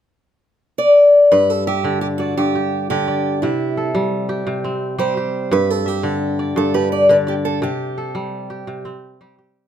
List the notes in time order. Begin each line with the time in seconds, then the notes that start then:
0.78 D5
1.32 G2 B4
1.50 A4
1.67 G4 E5
1.84 D3
2.01 G4
2.18 F#4 D5
2.37 G2 G4
2.55 G4
2.90 D3 G4
3.08 D5
3.42 C3 E4
3.77 A4
3.95 G3
4.29 G4
4.47 C3
4.64 C4
4.98 G3 G4 C5
5.17 G4
5.51 G2 B4
5.70 A4
5.86 G4 E5
6.03 D3
6.39 D5
6.56 G2 A4
6.74 G4 B4
6.92 D5
7.09 D3 B4 D5
7.27 G4 D5
7.45 A4
7.62 C3 G4
7.98 A4
8.15 G3
8.50 G4
8.67 C3
8.85 C4
9.21 G3 G4
9.38 G4